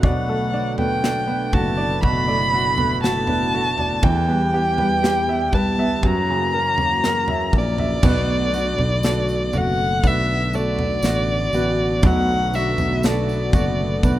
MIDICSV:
0, 0, Header, 1, 7, 480
1, 0, Start_track
1, 0, Key_signature, 2, "minor"
1, 0, Tempo, 1000000
1, 16, Time_signature, 4, 2, 24, 8
1, 3856, Key_signature, 2, "minor"
1, 6812, End_track
2, 0, Start_track
2, 0, Title_t, "Violin"
2, 0, Program_c, 0, 40
2, 22, Note_on_c, 0, 78, 79
2, 360, Note_off_c, 0, 78, 0
2, 376, Note_on_c, 0, 79, 87
2, 739, Note_on_c, 0, 81, 91
2, 746, Note_off_c, 0, 79, 0
2, 973, Note_off_c, 0, 81, 0
2, 976, Note_on_c, 0, 83, 100
2, 1437, Note_off_c, 0, 83, 0
2, 1454, Note_on_c, 0, 81, 92
2, 1940, Note_on_c, 0, 79, 91
2, 1948, Note_off_c, 0, 81, 0
2, 2657, Note_on_c, 0, 81, 88
2, 2664, Note_off_c, 0, 79, 0
2, 2907, Note_on_c, 0, 82, 93
2, 2914, Note_off_c, 0, 81, 0
2, 3622, Note_off_c, 0, 82, 0
2, 3637, Note_on_c, 0, 74, 90
2, 4592, Note_on_c, 0, 78, 107
2, 4600, Note_off_c, 0, 74, 0
2, 4834, Note_on_c, 0, 76, 102
2, 4841, Note_off_c, 0, 78, 0
2, 5068, Note_on_c, 0, 74, 99
2, 5075, Note_off_c, 0, 76, 0
2, 5791, Note_on_c, 0, 78, 103
2, 5799, Note_off_c, 0, 74, 0
2, 6022, Note_on_c, 0, 76, 86
2, 6029, Note_off_c, 0, 78, 0
2, 6265, Note_on_c, 0, 74, 84
2, 6272, Note_off_c, 0, 76, 0
2, 6812, Note_off_c, 0, 74, 0
2, 6812, End_track
3, 0, Start_track
3, 0, Title_t, "Grand piano"
3, 0, Program_c, 1, 0
3, 0, Control_c, 1, 64, 127
3, 0, Note_on_c, 1, 54, 43
3, 0, Note_on_c, 1, 59, 58
3, 19, Note_on_c, 1, 74, 55
3, 140, Note_on_c, 1, 69, 52
3, 251, Note_off_c, 1, 74, 0
3, 259, Note_on_c, 1, 74, 49
3, 370, Note_off_c, 1, 59, 0
3, 378, Note_on_c, 1, 59, 50
3, 498, Note_on_c, 1, 62, 51
3, 605, Note_off_c, 1, 59, 0
3, 612, Note_on_c, 1, 59, 53
3, 738, Note_on_c, 1, 66, 64
3, 840, Note_off_c, 1, 54, 0
3, 844, Note_off_c, 1, 74, 0
3, 851, Note_on_c, 1, 74, 56
3, 964, Note_off_c, 1, 66, 0
3, 972, Note_on_c, 1, 66, 49
3, 1079, Note_off_c, 1, 69, 0
3, 1085, Note_off_c, 1, 74, 0
3, 1092, Note_on_c, 1, 74, 53
3, 1209, Note_off_c, 1, 66, 0
3, 1216, Note_on_c, 1, 66, 54
3, 1328, Note_off_c, 1, 59, 0
3, 1335, Note_on_c, 1, 59, 54
3, 1438, Note_off_c, 1, 62, 0
3, 1445, Note_off_c, 1, 66, 0
3, 1453, Note_on_c, 1, 66, 53
3, 1570, Note_off_c, 1, 59, 0
3, 1577, Note_on_c, 1, 59, 49
3, 1692, Note_off_c, 1, 66, 0
3, 1699, Note_on_c, 1, 66, 59
3, 1813, Note_off_c, 1, 74, 0
3, 1820, Note_on_c, 1, 74, 43
3, 1926, Note_off_c, 1, 59, 0
3, 1930, Note_off_c, 1, 66, 0
3, 1935, Note_off_c, 1, 74, 0
3, 1939, Note_on_c, 1, 52, 60
3, 1942, Control_c, 1, 64, 0
3, 2019, Control_c, 1, 64, 127
3, 2057, Note_on_c, 1, 59, 46
3, 2178, Note_on_c, 1, 67, 56
3, 2297, Note_on_c, 1, 71, 48
3, 2415, Note_off_c, 1, 67, 0
3, 2422, Note_on_c, 1, 67, 55
3, 2539, Note_on_c, 1, 76, 51
3, 2654, Note_off_c, 1, 71, 0
3, 2661, Note_on_c, 1, 71, 50
3, 2773, Note_off_c, 1, 76, 0
3, 2780, Note_on_c, 1, 76, 59
3, 2877, Note_off_c, 1, 59, 0
3, 2879, Note_off_c, 1, 52, 0
3, 2885, Note_off_c, 1, 67, 0
3, 2891, Note_off_c, 1, 71, 0
3, 2895, Note_off_c, 1, 76, 0
3, 2902, Control_c, 1, 64, 0
3, 2902, Note_on_c, 1, 54, 67
3, 2983, Control_c, 1, 64, 127
3, 3021, Note_on_c, 1, 49, 52
3, 3138, Note_on_c, 1, 70, 54
3, 3373, Note_off_c, 1, 70, 0
3, 3380, Note_on_c, 1, 70, 60
3, 3500, Note_on_c, 1, 76, 50
3, 3734, Note_off_c, 1, 76, 0
3, 3741, Note_on_c, 1, 76, 50
3, 3840, Note_off_c, 1, 49, 0
3, 3840, Note_off_c, 1, 54, 0
3, 3844, Note_off_c, 1, 70, 0
3, 3855, Note_off_c, 1, 76, 0
3, 3857, Note_on_c, 1, 59, 65
3, 3862, Control_c, 1, 64, 0
3, 3960, Control_c, 1, 64, 127
3, 4100, Note_on_c, 1, 66, 48
3, 4341, Note_on_c, 1, 69, 51
3, 4569, Note_off_c, 1, 66, 0
3, 4577, Note_on_c, 1, 66, 49
3, 4814, Note_off_c, 1, 59, 0
3, 4821, Note_on_c, 1, 59, 49
3, 5053, Note_off_c, 1, 69, 0
3, 5060, Note_on_c, 1, 69, 49
3, 5293, Note_off_c, 1, 66, 0
3, 5300, Note_on_c, 1, 66, 58
3, 5536, Note_off_c, 1, 59, 0
3, 5543, Note_on_c, 1, 59, 53
3, 5783, Note_on_c, 1, 54, 66
3, 5999, Note_off_c, 1, 69, 0
3, 6013, Note_off_c, 1, 66, 0
3, 6020, Note_on_c, 1, 66, 52
3, 6264, Note_on_c, 1, 69, 57
3, 6480, Note_off_c, 1, 59, 0
3, 6492, Note_off_c, 1, 66, 0
3, 6499, Note_on_c, 1, 66, 58
3, 6740, Note_on_c, 1, 59, 54
3, 6812, Note_off_c, 1, 54, 0
3, 6812, Note_off_c, 1, 59, 0
3, 6812, Note_off_c, 1, 66, 0
3, 6812, Note_off_c, 1, 69, 0
3, 6812, End_track
4, 0, Start_track
4, 0, Title_t, "Nylon-string guitar"
4, 0, Program_c, 2, 24
4, 0, Note_on_c, 2, 62, 49
4, 15, Note_on_c, 2, 47, 71
4, 137, Note_on_c, 2, 57, 52
4, 250, Note_off_c, 2, 62, 0
4, 255, Note_on_c, 2, 62, 59
4, 371, Note_off_c, 2, 57, 0
4, 377, Note_on_c, 2, 57, 48
4, 609, Note_off_c, 2, 62, 0
4, 615, Note_on_c, 2, 62, 54
4, 731, Note_off_c, 2, 57, 0
4, 737, Note_on_c, 2, 57, 46
4, 852, Note_off_c, 2, 62, 0
4, 857, Note_on_c, 2, 62, 53
4, 969, Note_off_c, 2, 47, 0
4, 974, Note_on_c, 2, 47, 72
4, 1091, Note_off_c, 2, 57, 0
4, 1097, Note_on_c, 2, 57, 49
4, 1210, Note_off_c, 2, 62, 0
4, 1216, Note_on_c, 2, 62, 55
4, 1331, Note_off_c, 2, 57, 0
4, 1337, Note_on_c, 2, 57, 50
4, 1457, Note_on_c, 2, 66, 62
4, 1569, Note_off_c, 2, 62, 0
4, 1575, Note_on_c, 2, 62, 55
4, 1692, Note_off_c, 2, 57, 0
4, 1697, Note_on_c, 2, 57, 53
4, 1813, Note_off_c, 2, 62, 0
4, 1819, Note_on_c, 2, 62, 55
4, 1937, Note_on_c, 2, 40, 76
4, 1983, Note_off_c, 2, 47, 0
4, 1985, Note_off_c, 2, 57, 0
4, 1985, Note_off_c, 2, 62, 0
4, 1985, Note_off_c, 2, 66, 0
4, 2058, Note_on_c, 2, 55, 57
4, 2177, Note_on_c, 2, 59, 58
4, 2290, Note_off_c, 2, 55, 0
4, 2296, Note_on_c, 2, 55, 54
4, 2414, Note_on_c, 2, 67, 61
4, 2529, Note_off_c, 2, 59, 0
4, 2535, Note_on_c, 2, 59, 60
4, 2648, Note_off_c, 2, 55, 0
4, 2654, Note_on_c, 2, 55, 50
4, 2769, Note_off_c, 2, 59, 0
4, 2774, Note_on_c, 2, 59, 55
4, 2895, Note_off_c, 2, 40, 0
4, 2897, Note_on_c, 2, 42, 70
4, 2943, Note_off_c, 2, 55, 0
4, 2943, Note_off_c, 2, 59, 0
4, 2943, Note_off_c, 2, 67, 0
4, 3017, Note_on_c, 2, 58, 48
4, 3138, Note_on_c, 2, 61, 57
4, 3252, Note_off_c, 2, 58, 0
4, 3258, Note_on_c, 2, 58, 51
4, 3378, Note_on_c, 2, 66, 60
4, 3492, Note_off_c, 2, 61, 0
4, 3498, Note_on_c, 2, 61, 58
4, 3612, Note_off_c, 2, 58, 0
4, 3618, Note_on_c, 2, 58, 60
4, 3737, Note_off_c, 2, 61, 0
4, 3858, Note_on_c, 2, 47, 77
4, 3905, Note_off_c, 2, 42, 0
4, 3905, Note_off_c, 2, 58, 0
4, 4097, Note_on_c, 2, 62, 57
4, 4339, Note_off_c, 2, 66, 0
4, 4341, Note_on_c, 2, 66, 61
4, 4580, Note_on_c, 2, 57, 53
4, 4812, Note_off_c, 2, 62, 0
4, 4818, Note_on_c, 2, 62, 54
4, 5054, Note_off_c, 2, 57, 0
4, 5060, Note_on_c, 2, 57, 56
4, 5294, Note_off_c, 2, 62, 0
4, 5299, Note_on_c, 2, 62, 57
4, 5534, Note_off_c, 2, 66, 0
4, 5540, Note_on_c, 2, 66, 66
4, 5776, Note_off_c, 2, 47, 0
4, 5782, Note_on_c, 2, 47, 77
4, 6013, Note_off_c, 2, 62, 0
4, 6018, Note_on_c, 2, 62, 61
4, 6253, Note_off_c, 2, 66, 0
4, 6258, Note_on_c, 2, 66, 64
4, 6493, Note_off_c, 2, 57, 0
4, 6499, Note_on_c, 2, 57, 49
4, 6732, Note_off_c, 2, 62, 0
4, 6738, Note_on_c, 2, 62, 59
4, 6812, Note_off_c, 2, 47, 0
4, 6812, Note_off_c, 2, 57, 0
4, 6812, Note_off_c, 2, 62, 0
4, 6812, Note_off_c, 2, 66, 0
4, 6812, End_track
5, 0, Start_track
5, 0, Title_t, "Analog synth pad"
5, 0, Program_c, 3, 89
5, 0, Note_on_c, 3, 50, 73
5, 0, Note_on_c, 3, 54, 85
5, 0, Note_on_c, 3, 57, 67
5, 0, Note_on_c, 3, 59, 73
5, 723, Note_off_c, 3, 54, 0
5, 731, Note_on_c, 3, 64, 84
5, 1914, Note_off_c, 3, 50, 0
5, 1916, Note_off_c, 3, 57, 0
5, 1922, Note_off_c, 3, 64, 0
5, 1927, Note_on_c, 3, 67, 89
5, 1929, Note_on_c, 3, 55, 69
5, 1934, Note_on_c, 3, 52, 80
5, 2876, Note_off_c, 3, 59, 0
5, 2882, Note_off_c, 3, 67, 0
5, 2883, Note_off_c, 3, 55, 0
5, 2885, Note_off_c, 3, 52, 0
5, 2892, Note_on_c, 3, 49, 70
5, 2892, Note_on_c, 3, 52, 76
5, 2893, Note_on_c, 3, 66, 77
5, 2894, Note_on_c, 3, 58, 65
5, 3844, Note_off_c, 3, 49, 0
5, 3845, Note_off_c, 3, 52, 0
5, 3845, Note_off_c, 3, 58, 0
5, 3845, Note_off_c, 3, 66, 0
5, 3852, Note_on_c, 3, 59, 75
5, 3853, Note_on_c, 3, 50, 79
5, 3854, Note_on_c, 3, 57, 72
5, 3856, Note_on_c, 3, 66, 79
5, 6812, Note_off_c, 3, 50, 0
5, 6812, Note_off_c, 3, 57, 0
5, 6812, Note_off_c, 3, 59, 0
5, 6812, Note_off_c, 3, 66, 0
5, 6812, End_track
6, 0, Start_track
6, 0, Title_t, "Fretless electric bass"
6, 0, Program_c, 4, 35
6, 0, Note_on_c, 4, 35, 73
6, 717, Note_off_c, 4, 35, 0
6, 734, Note_on_c, 4, 30, 74
6, 1916, Note_off_c, 4, 30, 0
6, 1935, Note_on_c, 4, 40, 95
6, 2654, Note_off_c, 4, 40, 0
6, 2654, Note_on_c, 4, 35, 82
6, 2895, Note_off_c, 4, 35, 0
6, 2895, Note_on_c, 4, 42, 90
6, 3356, Note_off_c, 4, 42, 0
6, 3614, Note_on_c, 4, 34, 85
6, 3838, Note_off_c, 4, 34, 0
6, 3854, Note_on_c, 4, 35, 94
6, 4196, Note_off_c, 4, 35, 0
6, 4221, Note_on_c, 4, 35, 84
6, 4559, Note_off_c, 4, 35, 0
6, 4580, Note_on_c, 4, 30, 76
6, 4801, Note_off_c, 4, 30, 0
6, 4817, Note_on_c, 4, 35, 78
6, 5278, Note_off_c, 4, 35, 0
6, 5295, Note_on_c, 4, 33, 80
6, 5519, Note_off_c, 4, 33, 0
6, 5535, Note_on_c, 4, 33, 68
6, 5759, Note_off_c, 4, 33, 0
6, 5775, Note_on_c, 4, 35, 90
6, 6116, Note_off_c, 4, 35, 0
6, 6135, Note_on_c, 4, 35, 83
6, 6477, Note_off_c, 4, 35, 0
6, 6495, Note_on_c, 4, 30, 80
6, 6719, Note_off_c, 4, 30, 0
6, 6738, Note_on_c, 4, 35, 82
6, 6812, Note_off_c, 4, 35, 0
6, 6812, End_track
7, 0, Start_track
7, 0, Title_t, "Drums"
7, 16, Note_on_c, 9, 36, 104
7, 16, Note_on_c, 9, 43, 82
7, 64, Note_off_c, 9, 36, 0
7, 64, Note_off_c, 9, 43, 0
7, 374, Note_on_c, 9, 43, 59
7, 422, Note_off_c, 9, 43, 0
7, 499, Note_on_c, 9, 38, 98
7, 547, Note_off_c, 9, 38, 0
7, 734, Note_on_c, 9, 43, 54
7, 735, Note_on_c, 9, 36, 83
7, 782, Note_off_c, 9, 43, 0
7, 783, Note_off_c, 9, 36, 0
7, 972, Note_on_c, 9, 43, 50
7, 975, Note_on_c, 9, 36, 85
7, 1020, Note_off_c, 9, 43, 0
7, 1023, Note_off_c, 9, 36, 0
7, 1333, Note_on_c, 9, 43, 60
7, 1381, Note_off_c, 9, 43, 0
7, 1460, Note_on_c, 9, 38, 88
7, 1508, Note_off_c, 9, 38, 0
7, 1571, Note_on_c, 9, 43, 55
7, 1619, Note_off_c, 9, 43, 0
7, 1813, Note_on_c, 9, 43, 55
7, 1861, Note_off_c, 9, 43, 0
7, 1934, Note_on_c, 9, 43, 83
7, 1935, Note_on_c, 9, 36, 100
7, 1982, Note_off_c, 9, 43, 0
7, 1983, Note_off_c, 9, 36, 0
7, 2295, Note_on_c, 9, 43, 55
7, 2343, Note_off_c, 9, 43, 0
7, 2419, Note_on_c, 9, 38, 86
7, 2467, Note_off_c, 9, 38, 0
7, 2653, Note_on_c, 9, 43, 59
7, 2654, Note_on_c, 9, 36, 77
7, 2701, Note_off_c, 9, 43, 0
7, 2702, Note_off_c, 9, 36, 0
7, 2894, Note_on_c, 9, 43, 53
7, 2895, Note_on_c, 9, 36, 86
7, 2942, Note_off_c, 9, 43, 0
7, 2943, Note_off_c, 9, 36, 0
7, 3253, Note_on_c, 9, 43, 58
7, 3301, Note_off_c, 9, 43, 0
7, 3378, Note_on_c, 9, 38, 86
7, 3426, Note_off_c, 9, 38, 0
7, 3493, Note_on_c, 9, 43, 57
7, 3541, Note_off_c, 9, 43, 0
7, 3615, Note_on_c, 9, 36, 85
7, 3663, Note_off_c, 9, 36, 0
7, 3736, Note_on_c, 9, 43, 57
7, 3784, Note_off_c, 9, 43, 0
7, 3854, Note_on_c, 9, 43, 96
7, 3854, Note_on_c, 9, 49, 87
7, 3855, Note_on_c, 9, 36, 113
7, 3857, Note_on_c, 9, 54, 40
7, 3902, Note_off_c, 9, 43, 0
7, 3902, Note_off_c, 9, 49, 0
7, 3903, Note_off_c, 9, 36, 0
7, 3905, Note_off_c, 9, 54, 0
7, 4097, Note_on_c, 9, 54, 43
7, 4145, Note_off_c, 9, 54, 0
7, 4216, Note_on_c, 9, 43, 55
7, 4264, Note_off_c, 9, 43, 0
7, 4335, Note_on_c, 9, 54, 68
7, 4341, Note_on_c, 9, 38, 98
7, 4383, Note_off_c, 9, 54, 0
7, 4389, Note_off_c, 9, 38, 0
7, 4456, Note_on_c, 9, 54, 31
7, 4504, Note_off_c, 9, 54, 0
7, 4574, Note_on_c, 9, 54, 38
7, 4577, Note_on_c, 9, 43, 60
7, 4622, Note_off_c, 9, 54, 0
7, 4625, Note_off_c, 9, 43, 0
7, 4816, Note_on_c, 9, 54, 39
7, 4817, Note_on_c, 9, 36, 86
7, 4819, Note_on_c, 9, 43, 57
7, 4864, Note_off_c, 9, 54, 0
7, 4865, Note_off_c, 9, 36, 0
7, 4867, Note_off_c, 9, 43, 0
7, 5056, Note_on_c, 9, 54, 45
7, 5104, Note_off_c, 9, 54, 0
7, 5178, Note_on_c, 9, 43, 58
7, 5226, Note_off_c, 9, 43, 0
7, 5292, Note_on_c, 9, 54, 75
7, 5300, Note_on_c, 9, 38, 97
7, 5340, Note_off_c, 9, 54, 0
7, 5348, Note_off_c, 9, 38, 0
7, 5534, Note_on_c, 9, 54, 45
7, 5582, Note_off_c, 9, 54, 0
7, 5772, Note_on_c, 9, 54, 44
7, 5775, Note_on_c, 9, 43, 101
7, 5776, Note_on_c, 9, 36, 103
7, 5820, Note_off_c, 9, 54, 0
7, 5823, Note_off_c, 9, 43, 0
7, 5824, Note_off_c, 9, 36, 0
7, 6016, Note_on_c, 9, 54, 48
7, 6064, Note_off_c, 9, 54, 0
7, 6135, Note_on_c, 9, 43, 61
7, 6136, Note_on_c, 9, 54, 32
7, 6183, Note_off_c, 9, 43, 0
7, 6184, Note_off_c, 9, 54, 0
7, 6256, Note_on_c, 9, 54, 76
7, 6261, Note_on_c, 9, 38, 100
7, 6304, Note_off_c, 9, 54, 0
7, 6309, Note_off_c, 9, 38, 0
7, 6379, Note_on_c, 9, 54, 27
7, 6427, Note_off_c, 9, 54, 0
7, 6495, Note_on_c, 9, 43, 59
7, 6496, Note_on_c, 9, 36, 96
7, 6496, Note_on_c, 9, 54, 40
7, 6543, Note_off_c, 9, 43, 0
7, 6544, Note_off_c, 9, 36, 0
7, 6544, Note_off_c, 9, 54, 0
7, 6736, Note_on_c, 9, 36, 91
7, 6736, Note_on_c, 9, 43, 56
7, 6739, Note_on_c, 9, 54, 44
7, 6784, Note_off_c, 9, 36, 0
7, 6784, Note_off_c, 9, 43, 0
7, 6787, Note_off_c, 9, 54, 0
7, 6812, End_track
0, 0, End_of_file